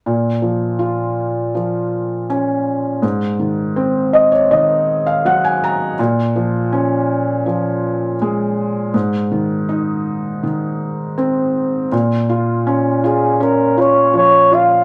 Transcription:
<<
  \new Staff \with { instrumentName = "Flugelhorn" } { \time 4/4 \key bes \minor \tempo 4 = 81 r1 | r1 | r1 | r1 |
r4. aes'8 bes'8 des''8 des''8 f''8 | }
  \new Staff \with { instrumentName = "Felt piano" } { \time 4/4 \key bes \minor r1 | r4. ees''16 des''16 ees''8. f''16 ges''16 aes''16 bes''8 | r1 | r1 |
r1 | }
  \new Staff \with { instrumentName = "Felt piano" } { \clef bass \time 4/4 \key bes \minor bes,8 f8 f'4 f4 des'4 | aes,8 ees8 c'4 ees4 ges4 | bes,8 f8 des'4 f4 aes4 | aes,8 ees8 ees'4 ees4 c'4 |
bes,8 f'8 des'8 f'8 des'8 f'8 f8 f'8 | }
>>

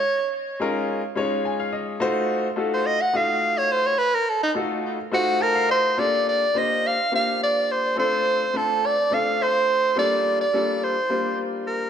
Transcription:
<<
  \new Staff \with { instrumentName = "Soprano saxophone" } { \time 7/8 \key f \phrygian \tempo 4 = 106 des''8 r2. | r4 r16 c''16 ees''16 ges''16 f''8. des''16 c''16 des''16 | ces''16 bes'16 a'16 ees'16 r4 ges'8 bes'8 c''8 | \key g \minor d''8 d''8 ees''8 f''8 f''8 d''8 c''8 |
c''4 a'8 d''8 f''8 c''4 | d''8. d''8. c''4 r8 bes'8 | }
  \new Staff \with { instrumentName = "Grand piano" } { \time 7/8 \key f \phrygian << { r2 r8 aes''16 f''16 ees''8 | r2. r8 | r2 r8 a''16 f''16 ees''8 | \key g \minor r2. r8 |
r2. r8 | r2. r8 | } \\ { r4 <aes des' ees' f' bes'>8 r8 <aes des' ees' f' des''>4. | <a ees' f' ges' c''>4 <a ees' f' ges' a'>8 r8 <a ees' f' ges' ees''>4. | r4 <a ees' f' ges' a'>8 r8 <a ees' f' ges' c''>4. | <bes d' f' g' a'>4 <bes d' f' g' c''>8 r8 <bes d' f' g' c''>4. |
<a c' d' f' a'>4 <a c' d' f' c''>8 r8 <a c' d' f' a'>4. | <g bes d' f' a'>4 <g bes d' f' a'>8 r8 <g bes d' f' c''>4. | } >> }
>>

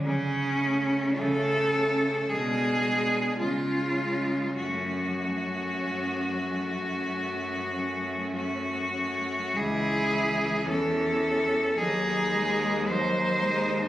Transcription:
<<
  \new Staff \with { instrumentName = "Cello" } { \time 4/4 \key fis \minor \tempo 4 = 53 cis'4 a'4 gis'4 eis'4 | fis'2. fis'4 | \key cis \minor gis'4 a'4 gis'4 bis'4 | }
  \new Staff \with { instrumentName = "Cello" } { \time 4/4 \key fis \minor r8 cis'4 cis'8 d'8 d'8 cis'8 cis'8 | cis'8 cis'4 cis'4 cis'4 cis'8 | \key cis \minor e'4 cis'4 dis'4 dis'4 | }
  \new Staff \with { instrumentName = "Cello" } { \clef bass \time 4/4 \key fis \minor r8 a4 a8 gis8 gis8 gis8 gis8 | a8 a4 a4 a4 a8 | \key cis \minor e2 fis8 gis8 fis8 gis8 | }
  \new Staff \with { instrumentName = "Cello" } { \clef bass \time 4/4 \key fis \minor cis4 cis4 b,4 cis4 | fis,4 fis,4 fis,4 fis,4 | \key cis \minor cis,4 e,4 dis,2 | }
>>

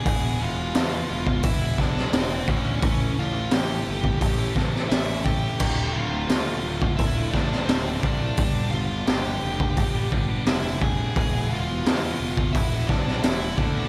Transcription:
<<
  \new Staff \with { instrumentName = "Lead electric guitar" } { \time 4/4 \key e \phrygian \tempo 4 = 86 <gis' gis''>8 <f' f''>4. <e' e''>8 <d' d''>8 <c' c''>8 <cis' cis''>8~ | <cis' cis''>8 <f' f''>8 <g' g''>4. r8 <e' e''>8 <g' g''>8~ | <g' g''>8 <f' f''>4. <e' e''>8 <d' d''>8 <c' c''>8 <d' d''>8~ | <d' d''>8 <f' f''>8 <g' g''>4. r8 <e' e''>8 <gis' gis''>8~ |
<gis' gis''>8 <f' f''>4. <e' e''>8 <d' d''>8 <e' e''>8 <d' d''>8 | }
  \new Staff \with { instrumentName = "Distorted electric guitar" } { \time 4/4 \key e \phrygian <e, b, e gis b e'>8 <e gis b e'>16 <e gis b e'>16 <e, b, e gis b e'>16 <e gis b e'>16 <e gis b e'>8. <e gis b e'>16 <e gis b e'>16 <e gis b e'>16 <e, b, e gis b e'>8 <e gis b e'>16 <e gis b e'>16 | <a, e a cis' e' a'>8 <a cis' e' a'>16 <a cis' e' a'>16 <a, e a cis' e' a'>16 <a cis' e' a'>16 <a cis' e' a'>8. <a cis' e' a'>16 <a cis' e' a'>16 <a cis' e' a'>16 <a, e a cis' e' a'>8 <a cis' e' a'>16 <a cis' e' a'>16 | <d, a, d a f'>8 <a, d a f'>16 <d a f'>16 <d, a, d a f'>16 <d a f'>16 <a, d a f'>8. <d a f'>16 <a, d a f'>16 <d a f'>16 <d, a, d a f'>8 <a, d a f'>16 <d a f'>16 | <g, d g b d' g'>8 <g b d' g'>16 <g b d' g'>16 <g, d g b d' g'>16 <g b d' g'>16 <g b d' g'>8. <g b d' g'>16 <g b d' g'>16 <g b d' g'>16 <g, d g b d' g'>8 <g b d' g'>16 <g b d' g'>16 |
<e, b, e gis b e'>8 <e gis b e'>16 <e gis b e'>16 <e, b, e gis b e'>16 <e gis b e'>16 <e gis b e'>8. <e gis b e'>16 <e gis b e'>16 <e gis b e'>16 <e, b, e gis b e'>8 <e gis b e'>16 <e gis b e'>16 | }
  \new Staff \with { instrumentName = "Distorted electric guitar" } { \time 4/4 \key e \phrygian <e, b, e gis b e'>4 <e, b, e gis b e'>8 <e gis b e'>8. <e gis b e'>16 <e gis b e'>16 <e gis b e'>16 <e, b, e gis b e'>8 <e gis b e'>16 <e gis b e'>16 | <a, e a cis' e' a'>4 <a, e a cis' e' a'>8 <a cis' e' a'>8. <a cis' e' a'>16 <a cis' e' a'>16 <a cis' e' a'>16 <a, e a cis' e' a'>8 <a cis' e' a'>16 <a cis' e' a'>16 | <d, a, d a f'>4 <d, a, d a f'>8 <a, d a f'>8. <d a f'>16 <a, d a f'>16 <d a f'>16 <d, a, d a f'>8 <a, d a f'>16 <d a f'>16 | <g, d g b d' g'>4 <g, d g b d' g'>8 <g b d' g'>8. <g b d' g'>16 <g b d' g'>16 <g b d' g'>16 <g, d g b d' g'>8 <g b d' g'>16 <g b d' g'>16 |
<e, b, e gis b e'>4 <e, b, e gis b e'>8 <e gis b e'>8. <e gis b e'>16 <e gis b e'>16 <e gis b e'>16 <e, b, e gis b e'>8 <e gis b e'>16 <e gis b e'>16 | }
  \new Staff \with { instrumentName = "Picked electric bass" } { \clef bass \time 4/4 \key e \phrygian e,,8 e,,8 e,8 e,,8 e,,8 b,,8 e,,8 d,8 | a,,8 a,,8 a,,8 g,,8 a,,8 a,,8 a,,4 | d,,8 d,,8 d,8 d,,8 d,,8 a,,8 d,,8 c,8 | g,,8 g,,8 g,,8 f,,8 g,,8 g,,8 f,,4 |
e,,8 e,,8 e,8 e,,8 e,,8 b,,8 e,,8 d,8 | }
  \new DrumStaff \with { instrumentName = "Drums" } \drummode { \time 4/4 <hho bd>4 <hho sn>8. bd16 <hho bd>8 <bd sn>16 sn16 <hho sn>8 bd8 | <hho bd>4 <hho sn>8. bd16 <hho bd>8 <bd sn>16 sn16 <hho sn>8 bd8 | <cymc bd>4 <hho sn>8. bd16 <hho bd>8 <bd sn>16 sn16 <hho sn>8 bd8 | <hho bd>4 <hho sn>8. bd16 <hho bd>8 bd8 <hho sn>8 bd8 |
<hho bd>4 <hho sn>8. bd16 <hho bd>8 <bd sn>16 sn16 <hho sn>8 bd8 | }
>>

